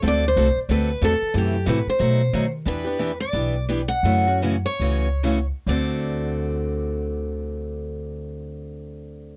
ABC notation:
X:1
M:4/4
L:1/8
Q:"Swing" 1/4=165
K:Dmix
V:1 name="Steel-string acoustic guitar"
d c2 z B2 A2 | G2 B c4 z | B3 d3 z f- | f2 z ^c4 z |
d8- | d8 |]
V:2 name="Steel-string acoustic guitar"
[D,A,CFA] z [D,A,CFA] z [D,A,CFA] z [D,A,CFA] z | [C,E,A,EF] z [C,E,A,EF] z [B,,F,A,^DF] z [B,,F,A,DF] z | [E,B,DG] [B,DG] [E,B,DG] z [E,B,DG] z [E,B,DG] z | [^C,E,A,^CF] [A,CF] [C,E,A,CF] z [C,E,A,CF] z [C,E,A,CF] z |
[D,A,CFA]8- | [D,A,CFA]8 |]
V:3 name="Upright bass" clef=bass
D,,2 C,, z D,,2 E,, z | F,,2 A,, z B,,2 ^D,2 | E,,4 B,,,4 | F,,4 ^C,,4 |
D,,8- | D,,8 |]